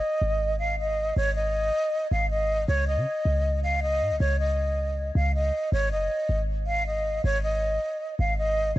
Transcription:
0, 0, Header, 1, 3, 480
1, 0, Start_track
1, 0, Tempo, 379747
1, 1474, Time_signature, 4, 2, 24, 8
1, 11105, End_track
2, 0, Start_track
2, 0, Title_t, "Flute"
2, 0, Program_c, 0, 73
2, 0, Note_on_c, 0, 75, 84
2, 704, Note_off_c, 0, 75, 0
2, 747, Note_on_c, 0, 77, 87
2, 962, Note_off_c, 0, 77, 0
2, 997, Note_on_c, 0, 75, 84
2, 1446, Note_off_c, 0, 75, 0
2, 1474, Note_on_c, 0, 73, 115
2, 1686, Note_off_c, 0, 73, 0
2, 1710, Note_on_c, 0, 75, 89
2, 2621, Note_off_c, 0, 75, 0
2, 2675, Note_on_c, 0, 77, 86
2, 2887, Note_off_c, 0, 77, 0
2, 2913, Note_on_c, 0, 75, 89
2, 3364, Note_off_c, 0, 75, 0
2, 3388, Note_on_c, 0, 73, 122
2, 3603, Note_off_c, 0, 73, 0
2, 3635, Note_on_c, 0, 75, 94
2, 4543, Note_off_c, 0, 75, 0
2, 4595, Note_on_c, 0, 77, 81
2, 4807, Note_off_c, 0, 77, 0
2, 4835, Note_on_c, 0, 75, 84
2, 5285, Note_off_c, 0, 75, 0
2, 5308, Note_on_c, 0, 73, 108
2, 5523, Note_off_c, 0, 73, 0
2, 5554, Note_on_c, 0, 75, 83
2, 6463, Note_off_c, 0, 75, 0
2, 6512, Note_on_c, 0, 77, 85
2, 6725, Note_off_c, 0, 77, 0
2, 6756, Note_on_c, 0, 75, 82
2, 7206, Note_off_c, 0, 75, 0
2, 7236, Note_on_c, 0, 73, 110
2, 7447, Note_off_c, 0, 73, 0
2, 7476, Note_on_c, 0, 75, 86
2, 8085, Note_off_c, 0, 75, 0
2, 8427, Note_on_c, 0, 77, 89
2, 8643, Note_off_c, 0, 77, 0
2, 8677, Note_on_c, 0, 75, 86
2, 9126, Note_off_c, 0, 75, 0
2, 9155, Note_on_c, 0, 73, 114
2, 9367, Note_off_c, 0, 73, 0
2, 9391, Note_on_c, 0, 75, 91
2, 10302, Note_off_c, 0, 75, 0
2, 10356, Note_on_c, 0, 77, 84
2, 10567, Note_off_c, 0, 77, 0
2, 10593, Note_on_c, 0, 75, 87
2, 11045, Note_off_c, 0, 75, 0
2, 11067, Note_on_c, 0, 73, 120
2, 11105, Note_off_c, 0, 73, 0
2, 11105, End_track
3, 0, Start_track
3, 0, Title_t, "808-style bass"
3, 0, Program_c, 1, 38
3, 273, Note_on_c, 1, 32, 104
3, 1425, Note_off_c, 1, 32, 0
3, 1473, Note_on_c, 1, 32, 110
3, 2164, Note_off_c, 1, 32, 0
3, 2673, Note_on_c, 1, 32, 105
3, 3365, Note_off_c, 1, 32, 0
3, 3393, Note_on_c, 1, 37, 105
3, 3753, Note_on_c, 1, 49, 101
3, 3772, Note_off_c, 1, 37, 0
3, 3867, Note_off_c, 1, 49, 0
3, 4113, Note_on_c, 1, 37, 108
3, 5073, Note_on_c, 1, 44, 95
3, 5092, Note_off_c, 1, 37, 0
3, 5193, Note_on_c, 1, 37, 101
3, 5212, Note_off_c, 1, 44, 0
3, 5307, Note_off_c, 1, 37, 0
3, 5313, Note_on_c, 1, 37, 109
3, 6465, Note_off_c, 1, 37, 0
3, 6513, Note_on_c, 1, 37, 101
3, 6974, Note_off_c, 1, 37, 0
3, 7233, Note_on_c, 1, 32, 105
3, 7473, Note_on_c, 1, 30, 94
3, 7492, Note_off_c, 1, 32, 0
3, 7701, Note_off_c, 1, 30, 0
3, 7953, Note_on_c, 1, 32, 107
3, 9105, Note_off_c, 1, 32, 0
3, 9153, Note_on_c, 1, 32, 112
3, 9845, Note_off_c, 1, 32, 0
3, 10353, Note_on_c, 1, 32, 102
3, 11044, Note_off_c, 1, 32, 0
3, 11105, End_track
0, 0, End_of_file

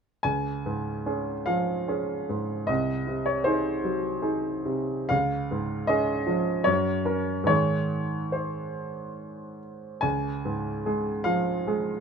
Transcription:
0, 0, Header, 1, 2, 480
1, 0, Start_track
1, 0, Key_signature, -5, "major"
1, 0, Tempo, 818554
1, 143, Time_signature, 3, 2, 24, 8
1, 1579, Tempo, 769231
1, 2539, Tempo, 882353
1, 3019, Tempo, 775194
1, 3979, Tempo, 841515
1, 5899, Tempo, 816327
1, 7058, End_track
2, 0, Start_track
2, 0, Title_t, "Grand piano"
2, 0, Program_c, 0, 0
2, 135, Note_on_c, 0, 80, 67
2, 143, Note_on_c, 0, 37, 42
2, 258, Control_c, 0, 64, 127
2, 386, Note_on_c, 0, 44, 35
2, 623, Note_on_c, 0, 61, 33
2, 625, Note_on_c, 0, 68, 35
2, 769, Note_off_c, 0, 44, 0
2, 842, Note_off_c, 0, 61, 0
2, 843, Note_off_c, 0, 68, 0
2, 855, Note_on_c, 0, 77, 65
2, 862, Note_off_c, 0, 80, 0
2, 863, Note_on_c, 0, 53, 37
2, 1104, Note_on_c, 0, 61, 35
2, 1109, Note_on_c, 0, 68, 37
2, 1253, Note_off_c, 0, 53, 0
2, 1323, Note_off_c, 0, 61, 0
2, 1325, Note_off_c, 0, 68, 0
2, 1344, Note_on_c, 0, 44, 37
2, 1556, Note_off_c, 0, 37, 0
2, 1565, Note_on_c, 0, 75, 64
2, 1574, Note_off_c, 0, 77, 0
2, 1575, Note_on_c, 0, 36, 49
2, 1577, Note_off_c, 0, 44, 0
2, 1590, Control_c, 0, 64, 0
2, 1694, Control_c, 0, 64, 127
2, 1815, Note_on_c, 0, 48, 35
2, 1929, Note_off_c, 0, 75, 0
2, 1931, Note_on_c, 0, 73, 53
2, 2046, Note_on_c, 0, 72, 62
2, 2053, Note_off_c, 0, 73, 0
2, 2055, Note_on_c, 0, 63, 38
2, 2058, Note_on_c, 0, 68, 40
2, 2198, Note_off_c, 0, 48, 0
2, 2271, Note_off_c, 0, 63, 0
2, 2272, Note_off_c, 0, 68, 0
2, 2293, Note_on_c, 0, 54, 40
2, 2532, Note_on_c, 0, 63, 35
2, 2535, Note_on_c, 0, 68, 37
2, 2676, Note_off_c, 0, 54, 0
2, 2751, Note_off_c, 0, 63, 0
2, 2752, Note_off_c, 0, 68, 0
2, 2770, Note_on_c, 0, 48, 39
2, 2996, Note_off_c, 0, 36, 0
2, 3005, Note_on_c, 0, 77, 74
2, 3015, Note_off_c, 0, 72, 0
2, 3015, Note_on_c, 0, 37, 51
2, 3016, Note_off_c, 0, 48, 0
2, 3031, Control_c, 0, 64, 0
2, 3126, Control_c, 0, 64, 127
2, 3265, Note_on_c, 0, 44, 41
2, 3490, Note_on_c, 0, 75, 75
2, 3498, Note_off_c, 0, 77, 0
2, 3500, Note_on_c, 0, 61, 41
2, 3505, Note_on_c, 0, 68, 43
2, 3644, Note_off_c, 0, 44, 0
2, 3714, Note_off_c, 0, 61, 0
2, 3716, Note_off_c, 0, 68, 0
2, 3733, Note_on_c, 0, 53, 47
2, 3952, Note_off_c, 0, 37, 0
2, 3965, Note_on_c, 0, 73, 71
2, 3972, Note_off_c, 0, 75, 0
2, 3975, Note_on_c, 0, 42, 52
2, 3976, Note_off_c, 0, 53, 0
2, 3988, Control_c, 0, 64, 0
2, 4083, Control_c, 0, 64, 127
2, 4201, Note_on_c, 0, 61, 40
2, 4204, Note_on_c, 0, 70, 42
2, 4420, Note_on_c, 0, 44, 47
2, 4427, Note_off_c, 0, 61, 0
2, 4428, Note_on_c, 0, 51, 38
2, 4429, Note_off_c, 0, 70, 0
2, 4429, Note_off_c, 0, 73, 0
2, 4436, Note_on_c, 0, 56, 38
2, 4438, Note_on_c, 0, 73, 69
2, 4439, Note_off_c, 0, 42, 0
2, 4442, Note_on_c, 0, 68, 36
2, 4464, Control_c, 0, 64, 0
2, 4581, Control_c, 0, 64, 127
2, 4925, Note_on_c, 0, 72, 47
2, 4930, Note_off_c, 0, 73, 0
2, 5650, Note_off_c, 0, 72, 0
2, 5860, Note_off_c, 0, 44, 0
2, 5865, Note_off_c, 0, 51, 0
2, 5868, Note_off_c, 0, 56, 0
2, 5871, Note_off_c, 0, 68, 0
2, 5887, Note_on_c, 0, 80, 68
2, 5896, Note_on_c, 0, 37, 50
2, 5913, Control_c, 0, 64, 0
2, 6029, Control_c, 0, 64, 127
2, 6147, Note_on_c, 0, 44, 38
2, 6386, Note_on_c, 0, 56, 38
2, 6389, Note_on_c, 0, 68, 39
2, 6531, Note_off_c, 0, 44, 0
2, 6600, Note_off_c, 0, 56, 0
2, 6602, Note_off_c, 0, 68, 0
2, 6611, Note_on_c, 0, 77, 73
2, 6618, Note_off_c, 0, 80, 0
2, 6620, Note_on_c, 0, 53, 41
2, 6865, Note_on_c, 0, 56, 36
2, 6869, Note_on_c, 0, 68, 40
2, 7003, Note_off_c, 0, 53, 0
2, 7058, Note_off_c, 0, 37, 0
2, 7058, Note_off_c, 0, 56, 0
2, 7058, Note_off_c, 0, 68, 0
2, 7058, Note_off_c, 0, 77, 0
2, 7058, End_track
0, 0, End_of_file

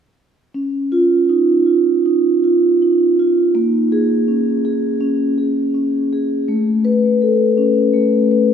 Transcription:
0, 0, Header, 1, 2, 480
1, 0, Start_track
1, 0, Key_signature, -5, "major"
1, 0, Tempo, 753769
1, 346, Time_signature, 4, 2, 24, 8
1, 1783, Tempo, 736196
1, 5523, End_track
2, 0, Start_track
2, 0, Title_t, "Vibraphone"
2, 0, Program_c, 0, 11
2, 347, Note_on_c, 0, 61, 48
2, 447, Control_c, 0, 64, 127
2, 586, Note_on_c, 0, 65, 55
2, 824, Note_on_c, 0, 63, 40
2, 970, Note_off_c, 0, 65, 0
2, 1060, Note_on_c, 0, 65, 37
2, 1210, Note_off_c, 0, 63, 0
2, 1282, Note_off_c, 0, 61, 0
2, 1310, Note_on_c, 0, 63, 43
2, 1447, Note_off_c, 0, 65, 0
2, 1553, Note_on_c, 0, 65, 43
2, 1690, Note_off_c, 0, 63, 0
2, 1796, Note_on_c, 0, 63, 41
2, 1932, Note_off_c, 0, 65, 0
2, 2040, Note_on_c, 0, 65, 43
2, 2175, Note_off_c, 0, 63, 0
2, 2271, Note_on_c, 0, 58, 56
2, 2273, Note_off_c, 0, 65, 0
2, 2276, Control_c, 0, 64, 0
2, 2384, Control_c, 0, 64, 127
2, 2514, Note_on_c, 0, 68, 58
2, 2748, Note_on_c, 0, 61, 38
2, 2895, Note_off_c, 0, 68, 0
2, 2989, Note_on_c, 0, 68, 43
2, 3132, Note_off_c, 0, 61, 0
2, 3205, Note_off_c, 0, 58, 0
2, 3221, Note_on_c, 0, 61, 51
2, 3374, Note_off_c, 0, 68, 0
2, 3463, Note_on_c, 0, 68, 39
2, 3612, Note_off_c, 0, 61, 0
2, 3703, Note_on_c, 0, 61, 40
2, 3856, Note_off_c, 0, 68, 0
2, 3952, Note_on_c, 0, 68, 44
2, 4096, Note_off_c, 0, 61, 0
2, 4184, Note_on_c, 0, 57, 51
2, 4195, Note_off_c, 0, 68, 0
2, 4208, Control_c, 0, 64, 0
2, 4308, Control_c, 0, 64, 127
2, 4421, Note_on_c, 0, 71, 56
2, 4665, Note_on_c, 0, 69, 38
2, 4809, Note_off_c, 0, 71, 0
2, 4895, Note_on_c, 0, 61, 44
2, 5049, Note_off_c, 0, 69, 0
2, 5117, Note_off_c, 0, 57, 0
2, 5133, Note_on_c, 0, 57, 49
2, 5283, Note_off_c, 0, 61, 0
2, 5377, Note_on_c, 0, 71, 42
2, 5523, Note_off_c, 0, 57, 0
2, 5523, Note_off_c, 0, 71, 0
2, 5523, End_track
0, 0, End_of_file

